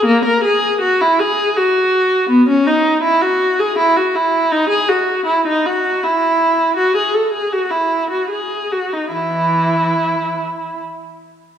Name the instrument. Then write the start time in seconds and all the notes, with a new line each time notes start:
viola
0.06 A#3
0.25 A#4
0.44 G#4
0.81 F#4
1.01 E4
1.20 G#4
1.58 F#4
2.30 B3
2.49 C#4
2.67 D#4
3.03 E4
3.22 F#4
3.59 G#4
3.78 E4
3.97 F#4
4.15 E4
4.52 D#4
4.70 G#4
4.89 F#4
5.26 E4
5.47 D#4
5.66 F#4
6.03 E4
6.77 F#4
6.97 G#4
7.14 A4
7.33 G#4
7.53 F#4
7.71 E4
8.11 F#4
8.30 G#4
8.71 F#4
8.93 D#4
9.13 E3 E4